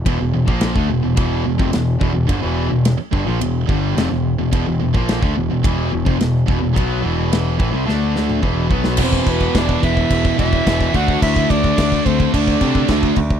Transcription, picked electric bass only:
\new Staff \with { instrumentName = "Picked electric bass" } { \clef bass \time 4/4 \key e \minor \tempo 4 = 108 e,,16 e,,16 e,,16 ais,,8 d,16 e,,16 e,,16 e,,8 e,,16 f,,16 e,,8 e,,16 e,,16 | g,,16 e,,8 e,,8 r16 g,,16 ais,,16 e,,8 g,,8 f,,16 e,,8 e,,16 | e,,16 e,,16 e,,16 ais,,8 d,16 e,,16 e,,16 e,,8 e,,16 f,,16 e,,8 e,,16 e,,16 | b,,8 e,,4 a,,16 c,16 d,4 e,,8 b,,8 |
e,,8 e,,8 e,,8 e,,8 e,,8 e,,8 e,,8 d,8 | d,8 d,8 d,8 d,8 d,8 c8 d,8 d,8 | }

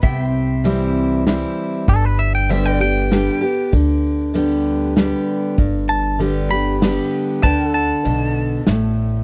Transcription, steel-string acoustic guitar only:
\new Staff \with { instrumentName = "Steel-string acoustic guitar" } { \clef bass \time 3/4 \key g \major \tempo 4 = 97 << { r4 <e g c' e'>4 <e g c' e'>4 | r4 <d g b g'>8 <b g'>8 <d g b g'>8 <b g'>8 | r4 <d g b g'>4 <d g b g'>4 | r4 <d g b g'>8 <b g'>8 <d g b g'>4 |
r2. | } \\ { c2 r4 | g,2 r4 | d2 r4 | g,2 r4 |
d4 b,4 a,4 | } >> }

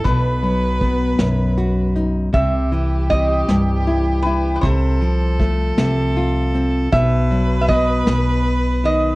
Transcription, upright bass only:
\new Staff \with { instrumentName = "Upright bass" } { \clef bass \time 6/8 \key b \phrygian \tempo 4. = 52 b,,4. b,,4. | c,4. c,4. | c,4. c,4. | b,,4. b,,4. | }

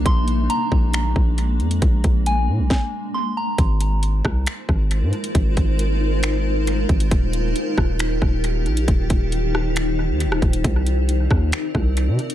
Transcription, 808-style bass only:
\new Staff \with { instrumentName = "808-style bass" } { \clef bass \time 4/4 \key aes \lydian \tempo 4 = 136 bes,,4 r8 bes,,4 bes,,4 f,8 | bes,,8 bes,,4 bes,16 bes,,16 r2 | aes,,4. c,8 r8 aes,,8. aes,16 r8 | aes,,8 aes,,2. aes,,8 |
ees,,4 r8 ees,,4 ees,,4 bes,,8 | ees,,8 ees,,2~ ees,,16 ees,16. ees,,16. ees,,8 | c,4. ees,8 r8 c,8. c16 r8 | }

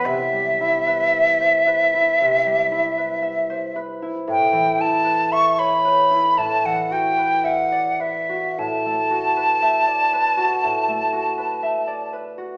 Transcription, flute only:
\new Staff \with { instrumentName = "Flute" } { \time 4/4 \key c \lydian \tempo 4 = 58 e''2.~ e''8 r8 | g''8 a''8 cis'''16 b''8. a''16 fis''16 g''8 fis''8 e''8 | a''2.~ a''8 r8 | }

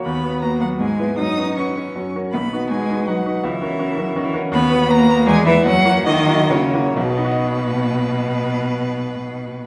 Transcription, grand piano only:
\new Staff \with { instrumentName = "Grand piano" } { \time 3/4 \key b \major \tempo 4 = 157 dis,8 <b fis' b'>8 <b fis' b'>8 <b fis' b'>8 gis,8 <b e' b'>8 | fis,8 <cis' fis' b'>8 <cis' fis' b'>8 <cis' fis' b'>8 fis,8 <cis' fis' ais'>8 | b,,8 <dis' fis' b'>8 <dis' fis' b'>8 <dis' fis' b'>8 <dis' fis' b'>8 <dis' fis' b'>8 | cis,8 <cis' fis' ais'>8 <cis' fis' ais'>8 <cis' fis' ais'>8 <cis' fis' ais'>8 <cis' fis' ais'>8 |
dis,8 <b fis' b'>8 <b fis' b'>8 <b fis' b'>8 e,8 <b e' b'>8 | fis,8 <ais e' fis'>8 <ais e' fis'>8 <ais e' fis'>8 <ais e' fis'>8 <ais e' fis'>8 | <b,, b, b dis' fis' dis''>2.~ | <b,, b, b dis' fis' dis''>2. | }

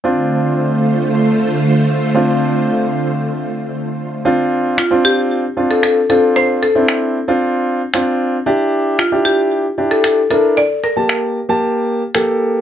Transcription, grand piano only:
\new Staff \with { instrumentName = "Grand piano" } { \time 4/4 \key d \minor \tempo 4 = 114 <c' d' f'>1 | <c' d' f'>1 | <c' d' f'>4 r16 <c' d' f'>4 r16 <c' d' f'>8. r16 <c' d' f'>8~ | <c' d' f'>8 r16 <c' d' e'>8. r16 <c' d' f'>4 r16 <c' d' f'>8. r16 |
<d' e' g'>4 r16 <d' e' g'>4 r16 <d' e' g'>8. r16 <d' e' bes'>8 | r8. <bes g' a''>8. r16 <bes g' a''>4 r16 <bes g' a'>8. r16 | }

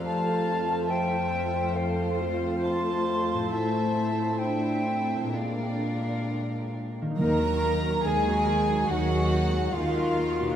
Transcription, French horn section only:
\new Staff \with { instrumentName = "French horn section" } { \time 4/4 \key bes \lydian \tempo 4 = 70 a'8 a'8 c''4 a'8 f'4. | e'4 d'8 c'8 d'4. r8 | \key ees \minor bes4 aes4 ges4 f'4 | }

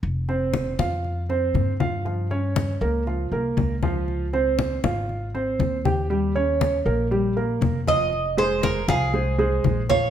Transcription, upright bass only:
\new Staff \with { instrumentName = "Upright bass" } { \clef bass \time 4/4 \key f \minor \tempo 4 = 119 f,,4. f,4. g,4~ | g,4. des,4 c,8 des,4~ | des,4. aes,,4. ees,4~ | ees,4. bes,,4. f,,4~ |
f,,4. c,4. bes,,4 | }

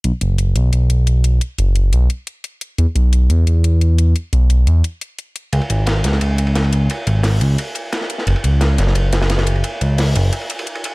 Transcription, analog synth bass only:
\new Staff \with { instrumentName = "Analog synth bass" } { \clef bass \time 4/4 \key e \lydian \tempo 4 = 175 b,,8 fis,,4 b,,8 b,,2 | r8 fis,,4 b,,8 r2 | e,8 b,,4 e,8 e,2 | r8 b,,4 e,8 r2 |
cis,8 gis,,4 cis,8 cis,2 | r8 gis,,4 cis,8 r2 | fis,,8 cis,4 fis,,8 fis,,2 | r8 cis,4 fis,,8 r2 | }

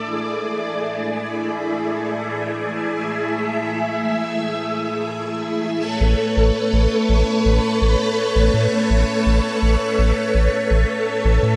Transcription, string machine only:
\new Staff \with { instrumentName = "String machine" } { \time 4/4 \key a \major \tempo 4 = 83 << { <gis' d''>1 | e''1 | <b' cis''>1~ | <b' cis''>1 | } \\ { <a e'>1~ | <a e'>1 | <a a'>1~ | <a a'>1 | } >> }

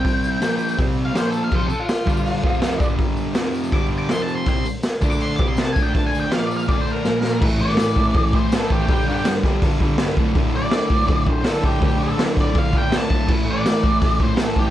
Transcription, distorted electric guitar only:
\new Staff \with { instrumentName = "Distorted electric guitar" } { \clef bass \time 4/4 \key d \minor \tempo 4 = 163 <c g c'>4 <bes, f bes>4 <c g c'>4 <bes, f bes>4 | <f, c f>8 r4 <g, d g>4 <f, c f>4 <g, d g>8~ | <g, d g>4 <f, c f>4 <g, d g>4 <f, c f>4 | <c g c'>8 r4 <d a d'>4 <c g c'>4 <d a d'>8 |
<d a d'>4 <bes, f bes>4 <d a d'>4 <bes, f bes>4 | <a, e a>8 <e a>8 <a, e a>8 <a, e a>8 <a, e a>8 <a, e a>8 <a, e a>8 <e a>8 | <g, d g>8 <d g>8 <g, d g>8 <g, d g>8 <g, d g>8 <g, d g>8 <g, d g>8 <d, a, d>8 | <d, a, d>8 <a, d>8 <d, a, d>8 <d, a, d>8 <d, a, d>8 <d, a, d>8 <d, a, d>8 <a, d>8 |
<d, a, d>8 <a, d>8 <d, a, d>8 <d, a, d>8 <d, a, d>8 <d, a, d>8 <d, a, d>8 <a, d>8 | <a, e a>8 <e a>8 <a, e a>8 <a, e a>8 <a, e a>8 <a, e a>8 <a, e a>8 <e a>8 | }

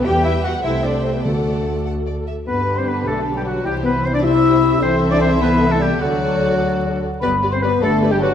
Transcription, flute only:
\new Staff \with { instrumentName = "Flute" } { \time 6/8 \key g \major \tempo 4. = 100 g''8 e''8 fis''8 e''8 d''8 c''16 b'16 | a'4. r4. | b''8. c'''16 b''8 a''8. g''16 fis''8 | g''8 b''8 c'''16 d'''16 e'''4. |
c'''8. d'''16 c'''8 b''8. a''16 g''8 | fis''2~ fis''8 r8 | b''8. c'''16 b''8 a''8. g''16 fis''8 | }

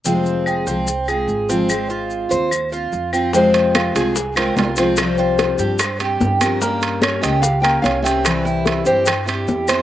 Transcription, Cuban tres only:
\new Staff \with { instrumentName = "Cuban tres" } { \time 4/4 \key f \minor \tempo 4 = 146 c'4 aes'8 c'4 aes'4 c'8~ | c'8 f'4 c''4 f'4 c'8 | c'4 f'8 aes'4 c'8 f'8 c'8~ | c'8 f'4 g'8 c''8 g'4 bes'8 |
bes4 des'8 g'4 bes8 des'8 c'8~ | c'8 e'4 g'8 c''8 g'4 c''8 | }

